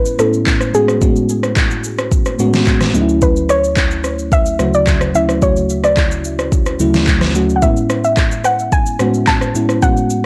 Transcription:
Already playing: fm electric piano A2 G#3 B3 C#4 E4, synth pluck B4
0.06 shaker
0.18 fm electric piano A2 A3 B3 C#4 E4, synth pluck A4, cross-stick, shaker
0.33 shaker
0.47 kick, clap, shaker
0.61 cross-stick, shaker
0.74 fm electric piano A2 G#3 B3 C#4 F#4, synth pluck G#4, shaker
0.88 cross-stick, shaker
1.01 fm electric piano A2 G#3 B3 C#4 F#4, kick, shaker
1.16 shaker
1.29 shaker
1.43 cross-stick, shaker
1.56 kick, clap, shaker
1.71 shaker
1.84 shaker
1.99 cross-stick, shaker
2.12 kick, shaker
2.26 cross-stick, shaker
2.39 fm electric piano A2 G#3 B3 C#4 F#4, shaker
2.54 snare, shaker
2.67 kick, clap, shaker
2.81 cross-stick, snare, shaker
2.94 fm electric piano D2 F#3 A3 C#4 D#4, shaker
3.01 fm electric piano E4
3.09 shaker
3.22 synth pluck B4, kick, shaker
3.36 shaker
3.49 synth pluck C#5, cross-stick, shaker
3.64 shaker
3.77 kick, clap, shaker
3.91 shaker
4.04 cross-stick, shaker
4.19 shaker
4.32 synth pluck E5, kick, shaker
4.46 shaker
4.59 fm electric piano D2 C#3 F#3 A3 F#4, cross-stick, shaker
4.74 synth pluck D5, shaker
4.87 kick, clap, shaker
5.01 cross-stick, shaker
5.14 fm electric piano D2 F#3 A3 C#4 E4, synth pluck E5, shaker
5.29 cross-stick, shaker
5.41 fm electric piano D2 C#3 F#3 A3 F#4, synth pluck C#5, kick, shaker
5.56 shaker
5.69 shaker
5.84 synth pluck D5, cross-stick, shaker
5.97 kick, clap, shaker
6.11 shaker
6.24 shaker
6.39 cross-stick, shaker
6.52 kick, shaker
6.66 cross-stick, shaker
6.79 fm electric piano D2 C#3 F#3 A3 E4, shaker
6.94 snare, shaker
7.07 kick, clap, shaker
7.21 cross-stick, snare, shaker
7.34 fm electric piano D2 F#3 A3 C#4 F#4, shaker
7.50 shaker
7.56 synth pluck F#5
7.62 fm electric piano A2 G#3 B3 C#4 E4, synth pluck E5, kick, shaker
7.77 shaker
7.90 cross-stick, shaker
8.04 synth pluck E5, shaker
8.17 kick, clap, shaker
8.31 shaker
8.44 synth pluck F#5, cross-stick, shaker
8.59 shaker
8.72 synth pluck G#5, kick, shaker
8.86 shaker
8.99 fm electric piano A2 G#3 B3 C#4 F#4, cross-stick, shaker
9.14 shaker
9.27 synth pluck A5, kick, clap, shaker
9.41 cross-stick, shaker
9.55 fm electric piano A2 G#3 B3 C#4 E4, shaker
9.69 cross-stick, shaker
9.82 fm electric piano A2 G#3 B3 C#4 F#4, synth pluck F#5, kick, shaker
9.97 shaker
10.10 shaker

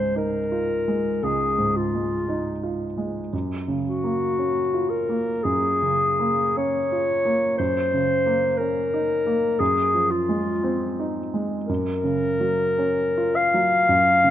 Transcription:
Already playing: grand piano C#2 G#2 G#3, clarinet C5
0.16 grand piano D#4, clarinet A#4
0.52 grand piano F4
0.88 grand piano G#3
1.23 grand piano C#2, clarinet G#4
1.58 grand piano G#2
1.76 clarinet F4
1.94 grand piano G#3
2.28 grand piano D#4
2.63 grand piano F4
2.98 grand piano G#3
3.33 grand piano F#2
3.68 grand piano C#3
3.85 clarinet F#4
4.04 grand piano A#3
4.39 grand piano C#4
4.74 grand piano F4
4.90 clarinet A#4
5.09 grand piano A#3
5.44 grand piano F#2, clarinet G#4
5.82 grand piano C#3
6.20 grand piano A#3
6.57 grand piano C#4, clarinet C#5
6.92 grand piano F4
7.25 grand piano A#3
7.58 grand piano F#2, clarinet C5
7.94 grand piano C#3
8.26 grand piano A#3
8.58 grand piano C#4, clarinet A#4
8.94 grand piano D#4
9.26 grand piano A#3
9.59 grand piano F#2, clarinet G#4
9.94 grand piano F3
10.11 clarinet F4
10.29 grand piano G#3
10.64 grand piano C4
10.99 grand piano D#4
11.34 grand piano G#3
11.67 grand piano F#2, clarinet A#4
12.04 grand piano C#3
12.40 grand piano F#3
12.78 grand piano C#4
13.17 grand piano F4
13.36 clarinet F5
13.54 grand piano F#3
13.89 grand piano F#2
14.24 grand piano C#3

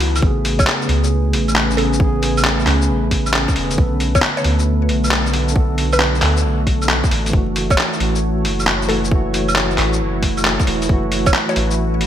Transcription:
Already playing: sub bass C#2, tine electric piano E3 A3 F#4, ambient pad A3 E4 F#4 B4
0.00 open hi-hat
0.16 tine electric piano C#3, open hi-hat, claves, shaker
0.22 sub bass A1, ambient pad A3 C#4 B4 G#5, tine electric piano B3, kick
0.27 tine electric piano G#4
0.45 open hi-hat, shaker
0.59 synth pluck C#5, kick, claves, shaker
0.67 clap
0.82 tine electric piano C#3, shaker
0.89 sub bass C#2, tine electric piano B3, open hi-hat
0.93 tine electric piano G#4
1.04 shaker
1.33 sub bass A1, open hi-hat
1.48 claves, shaker
1.56 clap
1.71 shaker
1.76 tine electric piano C#3 B3 G#4, synth pluck A4, open hi-hat
1.93 tine electric piano C#3, shaker
2.00 tine electric piano B3, kick
2.04 tine electric piano G#4
2.23 open hi-hat, shaker
2.37 claves, shaker
2.44 clap
2.59 tine electric piano C#3, shaker
2.67 sub bass C#2, tine electric piano B3, clap, open hi-hat
2.71 tine electric piano G#4
2.82 shaker
2.89 sub bass A1
3.11 kick, open hi-hat
3.26 claves, shaker
3.33 clap
3.48 kick, shaker
3.54 sub bass E1, tine electric piano C#3 B3, open hi-hat
3.58 tine electric piano G#4
3.71 tine electric piano D3, open hi-hat, shaker
3.78 sub bass B1, tine electric piano B3, ambient pad D4 F#4, kick
3.82 tine electric piano A4
4.00 open hi-hat, shaker
4.15 synth pluck C#5, kick, claves, shaker
4.22 clap
4.37 synth pluck C#5, shaker
4.41 sub bass D2, tine electric piano D3, open hi-hat
4.45 tine electric piano B3
4.49 tine electric piano A4
4.59 shaker
4.89 sub bass B1, open hi-hat
5.04 claves, shaker
5.11 clap
5.26 shaker
5.32 tine electric piano D3 B3 A4, open hi-hat
5.48 tine electric piano D3, shaker
5.56 tine electric piano B3, ambient pad A4, kick
5.60 tine electric piano A4
5.78 open hi-hat, shaker
5.93 synth pluck B4, claves, shaker
6.00 clap
6.15 tine electric piano D3, shaker
6.22 sub bass D2, tine electric piano B3, clap, open hi-hat
6.26 tine electric piano A4
6.37 shaker
6.44 sub bass B1
6.67 kick, open hi-hat
6.82 claves, shaker
6.89 clap
7.04 kick, shaker
7.11 sub bass A1, open hi-hat
7.26 tine electric piano E3, open hi-hat, shaker
7.33 sub bass F#1, tine electric piano A3, ambient pad E4 F#4 C#5, kick
7.37 tine electric piano F#4
7.56 open hi-hat, shaker
7.70 synth pluck C#5, kick, claves, shaker
7.78 clap
7.93 tine electric piano E3, shaker
8.00 sub bass A1, tine electric piano A3, open hi-hat
8.04 tine electric piano F#4
8.15 shaker
8.45 sub bass F#1, open hi-hat
8.60 claves, shaker
8.67 clap
8.82 shaker
8.87 tine electric piano E3 A3, synth pluck A4, open hi-hat
8.91 tine electric piano F#4
9.04 tine electric piano E3, shaker
9.11 tine electric piano A3 F#4, kick
9.34 open hi-hat, shaker
9.48 claves, shaker
9.56 clap
9.71 tine electric piano E3, shaker
9.78 sub bass A1, tine electric piano A3, clap, open hi-hat
9.82 tine electric piano F#4
9.93 shaker
10.00 sub bass F#1
10.23 kick, open hi-hat
10.37 claves, shaker
10.45 clap
10.60 kick, shaker
10.65 sub bass E1, tine electric piano E3 A3 F#4, open hi-hat
10.82 tine electric piano E3, open hi-hat, shaker
10.89 sub bass F#1, tine electric piano A3, ambient pad B4, kick
10.93 tine electric piano F#4
11.12 open hi-hat, shaker
11.26 synth pluck C#5, kick, claves, shaker
11.34 clap
11.49 tine electric piano E3, synth pluck C#5, shaker
11.55 sub bass A1, tine electric piano A3, open hi-hat
11.59 tine electric piano F#4
11.71 shaker
12.00 sub bass F#1, open hi-hat

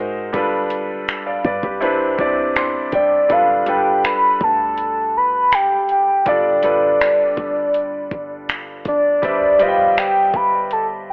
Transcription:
Already playing: 808-style bass G#2, grand piano G#3 D#4 F#4 A#4 C5
0.33 808-style bass G1, grand piano G3 D4 F4 A4 B4, kick, closed hi-hat
0.70 closed hi-hat
1.08 finger snap, closed hi-hat
1.26 grand piano D5 F5
1.45 808-style bass G2, grand piano B4 D5, kick
1.63 808-style bass C2, grand piano G4 B4, kick
1.81 grand piano C3 C4 D4 E4 B4, closed hi-hat
2.18 808-style bass C2, grand piano C3 C4 D4 E4 D5, kick
2.56 808-style bass E2, grand piano C6, finger snap, closed hi-hat
2.75 808-style bass C2
2.92 808-style bass C2, soft synth lead D5, grand piano G5, kick, closed hi-hat
3.29 808-style bass G1, grand piano G3 D4 F4 A4 B4, soft synth lead F5, kick, closed hi-hat
3.66 grand piano G3 D4 F4 A4 B4, soft synth lead G5, closed hi-hat
4.04 soft synth lead B5, finger snap, closed hi-hat
4.41 808-style bass D2, soft synth lead A5, kick
4.78 closed hi-hat
5.17 soft synth lead B5
5.52 soft synth lead G5, finger snap, closed hi-hat
5.89 soft synth lead G5, closed hi-hat
6.25 808-style bass G1, grand piano G3 D4 F4 A4 D5, soft synth lead D5, kick, closed hi-hat
6.62 grand piano G3 D4 F4 A4 B4, closed hi-hat
7.01 finger snap, closed hi-hat
7.37 808-style bass G1, kick
7.74 closed hi-hat
8.11 808-style bass G1, kick
8.49 finger snap, closed hi-hat
8.85 808-style bass G1, soft synth lead D5, kick, closed hi-hat
9.22 808-style bass G1, grand piano G3 G4 B4 C5 D5 E5, kick, closed hi-hat
9.59 grand piano G3 G4 B4 C5 D5 D#5, soft synth lead F5, closed hi-hat
9.68 grand piano G5
9.98 soft synth lead G5, finger snap, closed hi-hat
10.34 808-style bass G1, soft synth lead B5, kick
10.71 soft synth lead A5, closed hi-hat

